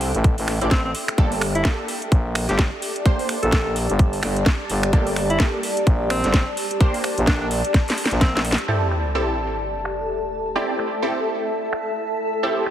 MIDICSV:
0, 0, Header, 1, 7, 480
1, 0, Start_track
1, 0, Tempo, 468750
1, 1208, Time_signature, 4, 2, 24, 8
1, 13009, End_track
2, 0, Start_track
2, 0, Title_t, "Ambient pad"
2, 0, Program_c, 0, 92
2, 0, Note_on_c, 0, 69, 79
2, 0, Note_on_c, 0, 76, 78
2, 0, Note_on_c, 0, 79, 83
2, 1209, Note_on_c, 0, 67, 74
2, 1479, Note_on_c, 0, 74, 75
2, 2087, Note_on_c, 0, 81, 77
2, 2110, Note_off_c, 0, 79, 0
2, 2616, Note_off_c, 0, 76, 0
2, 2728, Note_off_c, 0, 69, 0
2, 8890, Note_on_c, 0, 69, 87
2, 9809, Note_on_c, 0, 76, 90
2, 10030, Note_off_c, 0, 67, 0
2, 10652, Note_off_c, 0, 74, 0
2, 13009, Note_off_c, 0, 69, 0
2, 13009, Note_off_c, 0, 76, 0
2, 13009, Note_off_c, 0, 81, 0
2, 13009, End_track
3, 0, Start_track
3, 0, Title_t, "Synth stab"
3, 0, Program_c, 1, 62
3, 629, Note_on_c, 1, 60, 75
3, 629, Note_on_c, 1, 64, 67
3, 629, Note_on_c, 1, 67, 66
3, 629, Note_on_c, 1, 74, 83
3, 756, Note_off_c, 1, 60, 0
3, 756, Note_off_c, 1, 64, 0
3, 756, Note_off_c, 1, 67, 0
3, 756, Note_off_c, 1, 74, 0
3, 1208, Note_on_c, 1, 62, 84
3, 1208, Note_on_c, 1, 67, 84
3, 1208, Note_on_c, 1, 69, 103
3, 1209, Note_on_c, 1, 58, 90
3, 1440, Note_off_c, 1, 58, 0
3, 1440, Note_off_c, 1, 62, 0
3, 1440, Note_off_c, 1, 67, 0
3, 1440, Note_off_c, 1, 69, 0
3, 1688, Note_on_c, 1, 58, 96
3, 1688, Note_on_c, 1, 62, 85
3, 1688, Note_on_c, 1, 67, 85
3, 1688, Note_on_c, 1, 69, 104
3, 1848, Note_off_c, 1, 58, 0
3, 1848, Note_off_c, 1, 62, 0
3, 1848, Note_off_c, 1, 67, 0
3, 1848, Note_off_c, 1, 69, 0
3, 3128, Note_on_c, 1, 58, 96
3, 3128, Note_on_c, 1, 62, 86
3, 3128, Note_on_c, 1, 67, 87
3, 3128, Note_on_c, 1, 72, 106
3, 3359, Note_off_c, 1, 58, 0
3, 3359, Note_off_c, 1, 72, 0
3, 3360, Note_off_c, 1, 62, 0
3, 3360, Note_off_c, 1, 67, 0
3, 3608, Note_on_c, 1, 58, 83
3, 3608, Note_on_c, 1, 62, 75
3, 3608, Note_on_c, 1, 67, 75
3, 3608, Note_on_c, 1, 69, 92
3, 3768, Note_off_c, 1, 58, 0
3, 3768, Note_off_c, 1, 62, 0
3, 3768, Note_off_c, 1, 67, 0
3, 3768, Note_off_c, 1, 69, 0
3, 5048, Note_on_c, 1, 58, 93
3, 5048, Note_on_c, 1, 62, 83
3, 5048, Note_on_c, 1, 67, 83
3, 5048, Note_on_c, 1, 69, 104
3, 5280, Note_off_c, 1, 58, 0
3, 5280, Note_off_c, 1, 62, 0
3, 5280, Note_off_c, 1, 67, 0
3, 5280, Note_off_c, 1, 69, 0
3, 5528, Note_on_c, 1, 58, 96
3, 5528, Note_on_c, 1, 62, 86
3, 5528, Note_on_c, 1, 67, 89
3, 5528, Note_on_c, 1, 69, 105
3, 5688, Note_off_c, 1, 58, 0
3, 5688, Note_off_c, 1, 62, 0
3, 5688, Note_off_c, 1, 67, 0
3, 5688, Note_off_c, 1, 69, 0
3, 6968, Note_on_c, 1, 58, 96
3, 6968, Note_on_c, 1, 62, 88
3, 6968, Note_on_c, 1, 67, 87
3, 6968, Note_on_c, 1, 72, 106
3, 7200, Note_off_c, 1, 58, 0
3, 7200, Note_off_c, 1, 62, 0
3, 7200, Note_off_c, 1, 67, 0
3, 7200, Note_off_c, 1, 72, 0
3, 7448, Note_on_c, 1, 58, 86
3, 7448, Note_on_c, 1, 62, 80
3, 7448, Note_on_c, 1, 67, 78
3, 7448, Note_on_c, 1, 69, 94
3, 7608, Note_off_c, 1, 58, 0
3, 7608, Note_off_c, 1, 62, 0
3, 7608, Note_off_c, 1, 67, 0
3, 7608, Note_off_c, 1, 69, 0
3, 8888, Note_on_c, 1, 67, 82
3, 8889, Note_on_c, 1, 60, 85
3, 8889, Note_on_c, 1, 64, 78
3, 8889, Note_on_c, 1, 69, 98
3, 9120, Note_off_c, 1, 60, 0
3, 9120, Note_off_c, 1, 64, 0
3, 9120, Note_off_c, 1, 67, 0
3, 9120, Note_off_c, 1, 69, 0
3, 9368, Note_on_c, 1, 60, 91
3, 9368, Note_on_c, 1, 64, 85
3, 9368, Note_on_c, 1, 67, 85
3, 9369, Note_on_c, 1, 69, 103
3, 9528, Note_off_c, 1, 60, 0
3, 9528, Note_off_c, 1, 64, 0
3, 9528, Note_off_c, 1, 67, 0
3, 9528, Note_off_c, 1, 69, 0
3, 10809, Note_on_c, 1, 60, 91
3, 10809, Note_on_c, 1, 64, 83
3, 10809, Note_on_c, 1, 67, 84
3, 10809, Note_on_c, 1, 74, 100
3, 11040, Note_off_c, 1, 60, 0
3, 11040, Note_off_c, 1, 64, 0
3, 11040, Note_off_c, 1, 67, 0
3, 11040, Note_off_c, 1, 74, 0
3, 11289, Note_on_c, 1, 60, 83
3, 11289, Note_on_c, 1, 64, 78
3, 11289, Note_on_c, 1, 67, 78
3, 11289, Note_on_c, 1, 69, 91
3, 11448, Note_off_c, 1, 64, 0
3, 11448, Note_off_c, 1, 69, 0
3, 11449, Note_off_c, 1, 60, 0
3, 11449, Note_off_c, 1, 67, 0
3, 12729, Note_on_c, 1, 60, 90
3, 12729, Note_on_c, 1, 64, 80
3, 12729, Note_on_c, 1, 67, 81
3, 12729, Note_on_c, 1, 69, 97
3, 12960, Note_off_c, 1, 60, 0
3, 12960, Note_off_c, 1, 64, 0
3, 12960, Note_off_c, 1, 67, 0
3, 12960, Note_off_c, 1, 69, 0
3, 13009, End_track
4, 0, Start_track
4, 0, Title_t, "Alto saxophone"
4, 0, Program_c, 2, 65
4, 729, Note_on_c, 2, 60, 89
4, 819, Note_off_c, 2, 60, 0
4, 870, Note_on_c, 2, 60, 74
4, 933, Note_off_c, 2, 60, 0
4, 1590, Note_on_c, 2, 64, 89
4, 1720, Note_off_c, 2, 64, 0
4, 2549, Note_on_c, 2, 67, 89
4, 2680, Note_off_c, 2, 67, 0
4, 3509, Note_on_c, 2, 69, 92
4, 3849, Note_off_c, 2, 69, 0
4, 5428, Note_on_c, 2, 64, 95
4, 5559, Note_off_c, 2, 64, 0
4, 6248, Note_on_c, 2, 60, 91
4, 6629, Note_off_c, 2, 60, 0
4, 7449, Note_on_c, 2, 62, 88
4, 7539, Note_off_c, 2, 62, 0
4, 7589, Note_on_c, 2, 62, 77
4, 7653, Note_off_c, 2, 62, 0
4, 8410, Note_on_c, 2, 60, 89
4, 8499, Note_off_c, 2, 60, 0
4, 8551, Note_on_c, 2, 60, 75
4, 8614, Note_off_c, 2, 60, 0
4, 13009, End_track
5, 0, Start_track
5, 0, Title_t, "FM bass"
5, 0, Program_c, 3, 39
5, 0, Note_on_c, 3, 36, 91
5, 127, Note_off_c, 3, 36, 0
5, 149, Note_on_c, 3, 33, 96
5, 366, Note_off_c, 3, 33, 0
5, 389, Note_on_c, 3, 33, 97
5, 606, Note_off_c, 3, 33, 0
5, 629, Note_on_c, 3, 33, 99
5, 953, Note_off_c, 3, 33, 0
5, 1209, Note_on_c, 3, 31, 99
5, 1673, Note_off_c, 3, 31, 0
5, 2169, Note_on_c, 3, 34, 94
5, 2527, Note_off_c, 3, 34, 0
5, 2549, Note_on_c, 3, 31, 93
5, 2766, Note_off_c, 3, 31, 0
5, 3509, Note_on_c, 3, 34, 93
5, 3967, Note_off_c, 3, 34, 0
5, 3989, Note_on_c, 3, 31, 95
5, 4313, Note_off_c, 3, 31, 0
5, 4329, Note_on_c, 3, 31, 100
5, 4553, Note_off_c, 3, 31, 0
5, 4808, Note_on_c, 3, 31, 99
5, 5033, Note_off_c, 3, 31, 0
5, 5049, Note_on_c, 3, 31, 98
5, 5513, Note_off_c, 3, 31, 0
5, 6009, Note_on_c, 3, 34, 97
5, 6367, Note_off_c, 3, 34, 0
5, 6389, Note_on_c, 3, 31, 96
5, 6606, Note_off_c, 3, 31, 0
5, 7348, Note_on_c, 3, 34, 93
5, 7806, Note_off_c, 3, 34, 0
5, 8309, Note_on_c, 3, 34, 97
5, 8766, Note_off_c, 3, 34, 0
5, 13009, End_track
6, 0, Start_track
6, 0, Title_t, "Sub drop"
6, 0, Program_c, 4, 103
6, 8889, Note_on_c, 4, 60, 68
6, 10809, Note_off_c, 4, 60, 0
6, 13009, End_track
7, 0, Start_track
7, 0, Title_t, "Drums"
7, 9, Note_on_c, 9, 46, 105
7, 111, Note_off_c, 9, 46, 0
7, 149, Note_on_c, 9, 42, 65
7, 249, Note_off_c, 9, 42, 0
7, 249, Note_on_c, 9, 36, 125
7, 249, Note_on_c, 9, 42, 50
7, 351, Note_off_c, 9, 42, 0
7, 352, Note_off_c, 9, 36, 0
7, 389, Note_on_c, 9, 46, 65
7, 489, Note_off_c, 9, 46, 0
7, 489, Note_on_c, 9, 26, 76
7, 489, Note_on_c, 9, 38, 36
7, 489, Note_on_c, 9, 46, 110
7, 591, Note_off_c, 9, 26, 0
7, 591, Note_off_c, 9, 46, 0
7, 592, Note_off_c, 9, 38, 0
7, 629, Note_on_c, 9, 42, 63
7, 729, Note_off_c, 9, 42, 0
7, 729, Note_on_c, 9, 36, 107
7, 729, Note_on_c, 9, 42, 48
7, 730, Note_on_c, 9, 38, 111
7, 831, Note_off_c, 9, 36, 0
7, 832, Note_off_c, 9, 38, 0
7, 832, Note_off_c, 9, 42, 0
7, 969, Note_on_c, 9, 46, 109
7, 1072, Note_off_c, 9, 46, 0
7, 1110, Note_on_c, 9, 26, 84
7, 1110, Note_on_c, 9, 42, 63
7, 1209, Note_off_c, 9, 42, 0
7, 1209, Note_on_c, 9, 36, 118
7, 1209, Note_on_c, 9, 42, 52
7, 1212, Note_off_c, 9, 26, 0
7, 1311, Note_off_c, 9, 42, 0
7, 1312, Note_off_c, 9, 36, 0
7, 1349, Note_on_c, 9, 46, 60
7, 1449, Note_off_c, 9, 46, 0
7, 1449, Note_on_c, 9, 26, 63
7, 1449, Note_on_c, 9, 46, 100
7, 1551, Note_off_c, 9, 26, 0
7, 1551, Note_off_c, 9, 46, 0
7, 1589, Note_on_c, 9, 42, 62
7, 1689, Note_off_c, 9, 42, 0
7, 1689, Note_on_c, 9, 36, 104
7, 1689, Note_on_c, 9, 38, 113
7, 1689, Note_on_c, 9, 42, 49
7, 1791, Note_off_c, 9, 36, 0
7, 1791, Note_off_c, 9, 42, 0
7, 1792, Note_off_c, 9, 38, 0
7, 1929, Note_on_c, 9, 46, 105
7, 2031, Note_off_c, 9, 46, 0
7, 2069, Note_on_c, 9, 42, 66
7, 2169, Note_off_c, 9, 42, 0
7, 2169, Note_on_c, 9, 36, 122
7, 2169, Note_on_c, 9, 42, 51
7, 2271, Note_off_c, 9, 36, 0
7, 2272, Note_off_c, 9, 42, 0
7, 2409, Note_on_c, 9, 26, 81
7, 2409, Note_on_c, 9, 46, 108
7, 2511, Note_off_c, 9, 26, 0
7, 2511, Note_off_c, 9, 46, 0
7, 2550, Note_on_c, 9, 38, 34
7, 2550, Note_on_c, 9, 42, 61
7, 2649, Note_off_c, 9, 42, 0
7, 2649, Note_on_c, 9, 36, 107
7, 2649, Note_on_c, 9, 42, 48
7, 2650, Note_off_c, 9, 38, 0
7, 2650, Note_on_c, 9, 38, 112
7, 2751, Note_off_c, 9, 36, 0
7, 2752, Note_off_c, 9, 38, 0
7, 2752, Note_off_c, 9, 42, 0
7, 2889, Note_on_c, 9, 46, 109
7, 2992, Note_off_c, 9, 46, 0
7, 3030, Note_on_c, 9, 42, 65
7, 3129, Note_on_c, 9, 36, 113
7, 3130, Note_off_c, 9, 42, 0
7, 3130, Note_on_c, 9, 42, 52
7, 3231, Note_off_c, 9, 36, 0
7, 3232, Note_off_c, 9, 42, 0
7, 3270, Note_on_c, 9, 46, 59
7, 3370, Note_off_c, 9, 46, 0
7, 3370, Note_on_c, 9, 26, 66
7, 3370, Note_on_c, 9, 46, 98
7, 3472, Note_off_c, 9, 26, 0
7, 3472, Note_off_c, 9, 46, 0
7, 3510, Note_on_c, 9, 42, 64
7, 3609, Note_off_c, 9, 42, 0
7, 3609, Note_on_c, 9, 36, 101
7, 3609, Note_on_c, 9, 42, 53
7, 3610, Note_on_c, 9, 38, 114
7, 3711, Note_off_c, 9, 36, 0
7, 3712, Note_off_c, 9, 38, 0
7, 3712, Note_off_c, 9, 42, 0
7, 3849, Note_on_c, 9, 46, 98
7, 3952, Note_off_c, 9, 46, 0
7, 3989, Note_on_c, 9, 42, 70
7, 4089, Note_off_c, 9, 42, 0
7, 4089, Note_on_c, 9, 36, 115
7, 4089, Note_on_c, 9, 42, 53
7, 4191, Note_off_c, 9, 36, 0
7, 4191, Note_off_c, 9, 42, 0
7, 4229, Note_on_c, 9, 46, 60
7, 4329, Note_off_c, 9, 46, 0
7, 4329, Note_on_c, 9, 26, 83
7, 4329, Note_on_c, 9, 38, 36
7, 4329, Note_on_c, 9, 46, 103
7, 4431, Note_off_c, 9, 26, 0
7, 4431, Note_off_c, 9, 38, 0
7, 4431, Note_off_c, 9, 46, 0
7, 4469, Note_on_c, 9, 42, 66
7, 4568, Note_off_c, 9, 42, 0
7, 4568, Note_on_c, 9, 42, 51
7, 4569, Note_on_c, 9, 36, 105
7, 4569, Note_on_c, 9, 38, 110
7, 4671, Note_off_c, 9, 36, 0
7, 4671, Note_off_c, 9, 38, 0
7, 4671, Note_off_c, 9, 42, 0
7, 4808, Note_on_c, 9, 46, 99
7, 4911, Note_off_c, 9, 46, 0
7, 4949, Note_on_c, 9, 26, 86
7, 4949, Note_on_c, 9, 42, 66
7, 5048, Note_off_c, 9, 42, 0
7, 5048, Note_on_c, 9, 42, 57
7, 5049, Note_on_c, 9, 36, 112
7, 5051, Note_off_c, 9, 26, 0
7, 5151, Note_off_c, 9, 36, 0
7, 5151, Note_off_c, 9, 42, 0
7, 5189, Note_on_c, 9, 46, 58
7, 5288, Note_off_c, 9, 46, 0
7, 5288, Note_on_c, 9, 26, 68
7, 5288, Note_on_c, 9, 46, 96
7, 5391, Note_off_c, 9, 26, 0
7, 5391, Note_off_c, 9, 46, 0
7, 5428, Note_on_c, 9, 42, 69
7, 5528, Note_off_c, 9, 42, 0
7, 5528, Note_on_c, 9, 38, 114
7, 5528, Note_on_c, 9, 42, 55
7, 5529, Note_on_c, 9, 36, 102
7, 5630, Note_off_c, 9, 42, 0
7, 5631, Note_off_c, 9, 36, 0
7, 5631, Note_off_c, 9, 38, 0
7, 5768, Note_on_c, 9, 46, 101
7, 5871, Note_off_c, 9, 46, 0
7, 5909, Note_on_c, 9, 42, 69
7, 6009, Note_off_c, 9, 42, 0
7, 6009, Note_on_c, 9, 36, 112
7, 6009, Note_on_c, 9, 42, 55
7, 6111, Note_off_c, 9, 36, 0
7, 6111, Note_off_c, 9, 42, 0
7, 6249, Note_on_c, 9, 26, 85
7, 6249, Note_on_c, 9, 46, 102
7, 6351, Note_off_c, 9, 26, 0
7, 6351, Note_off_c, 9, 46, 0
7, 6389, Note_on_c, 9, 38, 34
7, 6389, Note_on_c, 9, 42, 66
7, 6489, Note_off_c, 9, 38, 0
7, 6489, Note_off_c, 9, 42, 0
7, 6489, Note_on_c, 9, 36, 102
7, 6489, Note_on_c, 9, 38, 112
7, 6489, Note_on_c, 9, 42, 53
7, 6591, Note_off_c, 9, 36, 0
7, 6591, Note_off_c, 9, 42, 0
7, 6592, Note_off_c, 9, 38, 0
7, 6729, Note_on_c, 9, 46, 105
7, 6831, Note_off_c, 9, 46, 0
7, 6869, Note_on_c, 9, 42, 69
7, 6969, Note_off_c, 9, 42, 0
7, 6969, Note_on_c, 9, 36, 113
7, 6969, Note_on_c, 9, 42, 56
7, 7071, Note_off_c, 9, 36, 0
7, 7071, Note_off_c, 9, 42, 0
7, 7109, Note_on_c, 9, 46, 57
7, 7208, Note_off_c, 9, 46, 0
7, 7208, Note_on_c, 9, 26, 67
7, 7208, Note_on_c, 9, 46, 99
7, 7311, Note_off_c, 9, 26, 0
7, 7311, Note_off_c, 9, 46, 0
7, 7348, Note_on_c, 9, 42, 69
7, 7448, Note_off_c, 9, 42, 0
7, 7448, Note_on_c, 9, 42, 54
7, 7449, Note_on_c, 9, 36, 103
7, 7449, Note_on_c, 9, 38, 122
7, 7551, Note_off_c, 9, 36, 0
7, 7551, Note_off_c, 9, 38, 0
7, 7551, Note_off_c, 9, 42, 0
7, 7689, Note_on_c, 9, 46, 99
7, 7791, Note_off_c, 9, 46, 0
7, 7829, Note_on_c, 9, 42, 71
7, 7929, Note_off_c, 9, 42, 0
7, 7929, Note_on_c, 9, 36, 115
7, 7929, Note_on_c, 9, 38, 68
7, 7929, Note_on_c, 9, 42, 54
7, 8031, Note_off_c, 9, 36, 0
7, 8031, Note_off_c, 9, 38, 0
7, 8031, Note_off_c, 9, 42, 0
7, 8069, Note_on_c, 9, 46, 60
7, 8089, Note_on_c, 9, 38, 79
7, 8169, Note_off_c, 9, 46, 0
7, 8169, Note_on_c, 9, 46, 107
7, 8191, Note_off_c, 9, 38, 0
7, 8249, Note_on_c, 9, 38, 82
7, 8271, Note_off_c, 9, 46, 0
7, 8308, Note_on_c, 9, 42, 66
7, 8351, Note_off_c, 9, 38, 0
7, 8408, Note_off_c, 9, 42, 0
7, 8408, Note_on_c, 9, 38, 84
7, 8408, Note_on_c, 9, 42, 54
7, 8409, Note_on_c, 9, 36, 103
7, 8511, Note_off_c, 9, 36, 0
7, 8511, Note_off_c, 9, 38, 0
7, 8511, Note_off_c, 9, 42, 0
7, 8568, Note_on_c, 9, 38, 97
7, 8648, Note_on_c, 9, 46, 104
7, 8671, Note_off_c, 9, 38, 0
7, 8729, Note_on_c, 9, 38, 102
7, 8751, Note_off_c, 9, 46, 0
7, 8789, Note_on_c, 9, 42, 70
7, 8831, Note_off_c, 9, 38, 0
7, 8891, Note_off_c, 9, 42, 0
7, 9128, Note_on_c, 9, 26, 60
7, 9231, Note_off_c, 9, 26, 0
7, 9269, Note_on_c, 9, 42, 66
7, 9371, Note_off_c, 9, 42, 0
7, 9749, Note_on_c, 9, 42, 66
7, 9849, Note_off_c, 9, 42, 0
7, 9849, Note_on_c, 9, 42, 51
7, 9952, Note_off_c, 9, 42, 0
7, 10089, Note_on_c, 9, 26, 75
7, 10191, Note_off_c, 9, 26, 0
7, 10229, Note_on_c, 9, 42, 64
7, 10329, Note_off_c, 9, 42, 0
7, 10329, Note_on_c, 9, 42, 50
7, 10432, Note_off_c, 9, 42, 0
7, 10709, Note_on_c, 9, 42, 65
7, 10812, Note_off_c, 9, 42, 0
7, 11049, Note_on_c, 9, 26, 60
7, 11152, Note_off_c, 9, 26, 0
7, 11189, Note_on_c, 9, 42, 62
7, 11292, Note_off_c, 9, 42, 0
7, 11669, Note_on_c, 9, 42, 65
7, 11769, Note_off_c, 9, 42, 0
7, 11769, Note_on_c, 9, 42, 50
7, 11871, Note_off_c, 9, 42, 0
7, 12008, Note_on_c, 9, 26, 73
7, 12111, Note_off_c, 9, 26, 0
7, 12149, Note_on_c, 9, 42, 62
7, 12249, Note_off_c, 9, 42, 0
7, 12249, Note_on_c, 9, 42, 49
7, 12351, Note_off_c, 9, 42, 0
7, 12629, Note_on_c, 9, 42, 61
7, 12731, Note_off_c, 9, 42, 0
7, 12968, Note_on_c, 9, 26, 58
7, 13009, Note_off_c, 9, 26, 0
7, 13009, End_track
0, 0, End_of_file